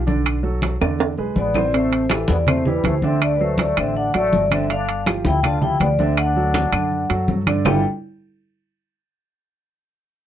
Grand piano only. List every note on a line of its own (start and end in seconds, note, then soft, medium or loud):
0.07 0.37 D3 medium
0.07 0.37 D4 medium
0.07 0.38 D5 medium
0.43 0.74 F#3 medium
0.43 0.74 F#4 medium
0.43 0.74 A4 medium
0.81 1.11 D3 medium
0.81 1.11 D4 medium
0.81 1.12 D5 medium
1.18 1.48 G#3 medium
1.18 1.49 G#4 medium
1.18 1.49 B4 medium
1.55 1.70 C3 medium
1.55 1.70 C4 medium
1.55 1.71 C5 medium
1.74 2.04 C3 medium
1.74 2.04 C4 medium
1.74 2.04 C5 medium
2.10 2.41 E3 medium
2.10 2.41 E4 medium
2.10 2.41 G4 medium
2.47 2.63 C3 medium
2.47 2.63 C4 medium
2.47 2.63 C5 medium
2.66 2.97 E3 medium
2.66 2.97 E4 medium
2.66 2.97 G4 medium
3.03 3.34 D3 medium
3.03 3.34 D4 medium
3.03 3.34 D5 medium
3.41 3.71 F#3 medium
3.41 3.71 F#4 medium
3.41 3.71 A4 medium
3.78 4.08 D3 medium
3.78 4.08 D4 medium
3.78 4.08 D5 medium
4.15 4.45 F#3 medium
4.15 4.45 F#4 medium
4.15 4.45 A4 medium
4.51 4.67 D3 medium
4.51 4.67 D4 medium
4.51 4.67 D5 medium
4.71 5.01 D3 medium
4.71 5.01 D4 medium
4.71 5.01 D5 medium
5.07 5.37 F3 medium
5.07 5.38 F4 medium
5.07 5.38 G4 medium
5.44 5.59 D3 medium
5.44 5.59 D4 medium
5.44 5.59 D5 medium
5.62 5.93 F3 medium
5.62 5.93 F4 medium
5.62 5.93 G4 medium
6.00 6.30 D3 medium
6.00 6.30 D4 medium
6.00 6.30 D5 medium
6.36 6.67 F#3 medium
6.36 6.67 F#4 medium
6.36 6.67 A4 medium
6.73 7.03 D3 medium
6.73 7.04 D4 medium
6.73 7.04 D5 medium
7.10 7.40 F#3 medium
7.10 7.41 F#4 medium
7.10 7.41 A4 medium
7.47 7.62 D3 medium
7.47 7.62 D4 medium
7.47 7.63 D5 medium
7.66 7.83 G3 medium
7.66 7.83 D4 medium
7.66 7.83 E4 medium
7.66 7.83 F4 medium
7.66 7.83 G4 medium
7.66 7.83 A4 loud